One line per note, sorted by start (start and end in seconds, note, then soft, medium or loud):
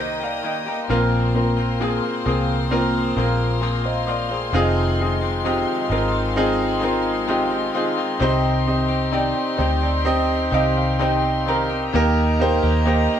0.00 0.40 C2 medium
0.00 0.21 D#3 medium
0.00 0.21 A#3 medium
0.00 0.89 A#3 medium
0.00 0.21 D#4 medium
0.00 0.92 D#4 medium
0.00 0.19 G4 medium
0.00 0.92 G4 medium
0.00 0.91 A#4 medium
0.00 4.49 A#4 medium
0.00 0.92 C5 loud
0.00 0.21 D#5 medium
0.00 0.85 D#5 medium
0.00 0.85 G5 medium
0.00 0.85 D#6 medium
0.20 0.43 A#3 soft
0.20 0.44 D#4 soft
0.20 0.44 G4 soft
0.20 0.44 D5 soft
0.20 0.44 F5 medium
0.43 0.67 D#3 medium
0.43 0.67 A#3 medium
0.43 0.67 D#4 medium
0.43 0.65 G4 medium
0.43 0.67 D#5 soft
0.43 0.66 G5 medium
0.66 0.89 A#3 soft
0.66 0.90 D#4 soft
0.66 0.89 G4 medium
0.66 1.11 G5 soft
0.66 1.11 A#5 soft
0.89 1.99 A#1 medium
0.89 1.58 A#2 medium
0.89 2.22 A#2 medium
0.89 1.58 F3 medium
0.89 1.33 A#3 medium
0.89 1.58 A#3 medium
0.89 1.33 C4 medium
0.89 1.57 C4 medium
0.89 1.33 F4 medium
0.89 1.56 F4 medium
0.89 1.33 A#4 medium
0.89 4.51 C5 medium
0.89 8.17 F5 medium
0.89 11.89 C6 medium
1.34 1.78 A#3 medium
1.34 1.78 C4 medium
1.34 1.78 F4 medium
1.34 1.78 A#4 medium
1.57 1.80 A#3 soft
1.57 1.81 C4 soft
1.57 1.80 F4 soft
1.80 2.03 A#2 medium
1.80 2.03 F3 medium
1.80 2.23 A#3 medium
1.80 2.04 A#3 medium
1.80 2.24 C4 medium
1.80 2.04 C4 medium
1.80 2.24 F4 medium
1.80 2.02 F4 medium
1.80 2.24 G#4 medium
2.03 2.25 A#3 soft
2.03 2.27 C4 soft
2.03 2.26 F4 soft
2.25 3.13 C2 medium
2.25 3.16 F3 medium
2.25 2.69 A#3 medium
2.25 3.17 A#3 medium
2.25 2.69 C4 medium
2.25 3.18 C4 medium
2.25 2.69 F4 medium
2.25 3.19 F4 medium
2.25 2.69 G#4 medium
2.71 3.15 A#3 loud
2.71 3.15 C4 medium
2.71 3.15 F4 medium
2.71 3.15 A#4 loud
3.16 4.50 A#1 medium
3.16 3.61 F3 medium
3.16 3.60 A#3 medium
3.16 3.62 A#3 medium
3.16 3.60 C4 medium
3.16 3.62 C4 medium
3.16 3.60 F4 medium
3.16 3.62 F4 medium
3.16 3.61 A#4 medium
3.61 3.85 A#2 medium
3.61 3.85 F3 medium
3.61 3.85 A#3 medium
3.61 3.84 C4 medium
3.61 3.83 F4 medium
3.84 4.06 A#3 soft
3.84 4.07 C4 soft
3.84 4.08 F4 soft
3.84 4.07 C5 soft
3.84 4.07 D#5 medium
4.07 4.30 F3 medium
4.07 4.31 A#3 medium
4.07 4.30 C4 medium
4.07 4.28 F4 medium
4.07 4.30 D5 soft
4.07 4.30 F5 medium
4.29 4.53 A#3 soft
4.29 4.53 C4 medium
4.29 4.53 F4 medium
4.29 4.54 G#4 soft
4.29 4.75 C5 medium
4.52 5.63 F1 medium
4.52 5.22 F2 medium
4.52 5.22 C3 medium
4.52 5.22 D#3 medium
4.52 8.17 G#3 medium
4.52 5.22 G#3 medium
4.52 4.97 C4 medium
4.52 5.21 C4 medium
4.52 11.88 D#4 medium
4.52 4.98 D#4 medium
4.52 4.98 F4 medium
4.52 5.20 F4 medium
4.52 4.98 G#4 loud
5.00 5.43 C4 medium
5.00 5.43 D#4 medium
5.00 5.44 F4 medium
5.00 5.44 G#4 medium
5.21 5.44 D#3 soft
5.21 5.44 G#3 soft
5.21 5.45 C4 medium
5.21 5.45 F4 medium
5.44 5.90 F2 medium
5.44 5.91 C3 medium
5.44 5.88 D#3 medium
5.44 5.89 G#3 medium
5.44 5.88 C4 medium
5.44 5.90 C4 medium
5.44 5.89 D#4 medium
5.44 5.89 F4 medium
5.44 5.91 F4 medium
5.44 5.89 G4 medium
5.89 7.70 G#1 medium
5.89 6.13 D#3 medium
5.89 6.12 G#3 medium
5.89 6.34 C4 medium
5.89 6.11 C4 medium
5.89 6.34 D#4 medium
5.89 6.35 F4 medium
5.89 6.10 F4 medium
5.89 6.35 A#4 medium
6.12 6.79 D#3 soft
6.12 6.80 G#3 soft
6.12 6.81 C4 soft
6.12 6.81 F4 soft
6.36 6.80 C4 loud
6.36 6.80 D#4 medium
6.36 6.80 F4 medium
6.36 6.80 G#4 loud
6.80 7.27 D#3 medium
6.80 7.27 G#3 medium
6.80 7.27 C4 medium
6.80 7.26 C4 medium
6.80 7.27 D#4 medium
6.80 7.28 F4 medium
6.80 7.27 F4 medium
6.80 7.27 A#4 medium
7.27 7.51 F2 medium
7.27 7.51 C3 medium
7.27 7.51 D#3 medium
7.27 7.51 G#3 medium
7.27 7.50 C4 medium
7.27 7.72 C4 medium
7.27 7.73 D#4 medium
7.27 7.48 F4 medium
7.27 7.73 F4 medium
7.27 7.73 G4 medium
7.50 7.72 D#3 soft
7.50 7.73 G#3 soft
7.50 7.74 C4 medium
7.50 7.74 F4 medium
7.73 7.97 D#3 medium
7.73 7.97 G#3 medium
7.73 8.18 C4 medium
7.73 7.97 C4 medium
7.73 8.19 D#4 medium
7.73 8.19 F4 medium
7.73 7.95 F4 medium
7.73 8.19 G#4 medium
7.97 8.19 D#3 medium
7.97 8.20 G#3 medium
7.97 8.19 C4 medium
7.97 8.20 F4 medium
8.19 9.32 C2 loud
8.19 8.89 C3 medium
8.19 9.55 C3 medium
8.19 8.89 D#3 medium
8.19 8.64 C4 medium
8.19 8.89 C4 medium
8.19 8.88 D#4 medium
8.19 8.65 D#4 medium
8.19 11.89 G4 medium
8.19 8.65 G4 medium
8.19 8.87 G4 medium
8.19 11.89 C5 medium
8.19 8.65 C5 loud
8.66 9.10 C4 medium
8.66 9.11 D#4 medium
8.66 9.11 G4 medium
8.66 9.11 D#5 medium
8.88 9.11 C4 soft
8.88 9.12 D#4 medium
8.88 9.12 G4 medium
9.12 9.35 C3 medium
9.12 9.36 D#3 medium
9.12 9.56 C4 medium
9.12 9.36 C4 medium
9.12 9.56 D#4 medium
9.12 9.35 D#4 medium
9.12 9.57 G4 medium
9.12 9.33 G4 medium
9.12 9.57 D5 medium
9.35 9.58 C4 soft
9.35 9.59 D#4 soft
9.35 9.58 G4 soft
9.57 10.48 D2 medium
9.57 9.82 D#3 medium
9.57 10.02 C4 medium
9.57 9.82 C4 medium
9.57 10.03 D#4 medium
9.57 9.81 D#4 medium
9.57 10.03 G4 medium
9.57 9.80 G4 medium
9.57 10.03 C5 medium
9.81 10.51 C4 soft
9.81 10.52 D#4 soft
9.81 10.52 G4 soft
9.81 10.04 D5 medium
10.05 10.50 C4 loud
10.05 10.50 D#4 medium
10.05 10.50 G4 medium
10.05 10.50 D#5 loud
10.51 11.89 C2 loud
10.51 10.98 D#3 medium
10.51 10.99 C4 medium
10.51 10.97 C4 medium
10.51 10.99 D#4 medium
10.51 10.97 D#4 medium
10.51 10.98 G4 medium
10.51 11.00 G4 medium
10.51 10.98 D#5 medium
10.51 10.75 F5 medium
10.77 10.98 F5 medium
10.99 11.23 C3 medium
10.99 11.23 D#3 medium
10.99 11.44 C4 medium
10.99 11.23 C4 medium
10.99 11.44 D#4 medium
10.99 11.22 D#4 medium
10.99 11.45 G4 medium
10.99 11.21 G4 medium
10.99 11.45 C5 medium
10.99 11.44 G5 medium
11.22 11.45 C4 soft
11.22 11.47 D#4 medium
11.22 11.46 G4 medium
11.46 11.69 D#3 medium
11.46 11.70 C4 medium
11.46 11.91 C4 medium
11.46 11.70 D#4 medium
11.46 11.92 D#4 medium
11.46 11.68 G4 medium
11.46 11.92 G4 medium
11.46 11.92 A#4 medium
11.46 11.91 A#5 medium
11.69 11.93 C4 soft
11.69 11.93 D#4 medium
11.69 11.93 G4 medium
11.91 12.59 D#2 medium
11.91 12.63 D#3 medium
11.91 13.20 D#3 medium
11.91 12.63 A#3 medium
11.91 12.37 A#3 loud
11.91 12.63 D#4 medium
11.91 12.38 D#4 medium
11.91 13.20 G4 medium
11.91 12.38 G4 medium
11.91 13.20 A#4 medium
11.91 13.20 D#5 medium
11.91 13.20 A#5 medium
11.95 12.61 G4 medium
11.95 12.38 A#4 loud
12.40 12.84 A#3 medium
12.40 12.84 D#4 medium
12.40 12.84 G4 medium
12.40 12.84 C5 loud
12.63 13.06 D#2 medium
12.63 12.86 A#3 soft
12.63 12.86 D#4 soft
12.63 12.86 G4 soft
12.86 13.09 D#3 medium
12.86 13.20 A#3 medium
12.86 13.09 A#3 medium
12.86 13.20 D#4 medium
12.86 13.09 D#4 medium
12.86 13.20 G4 medium
12.86 13.08 G4 medium
12.86 13.20 C5 medium
13.09 13.20 A#3 soft
13.09 13.20 D#4 soft
13.09 13.20 G4 medium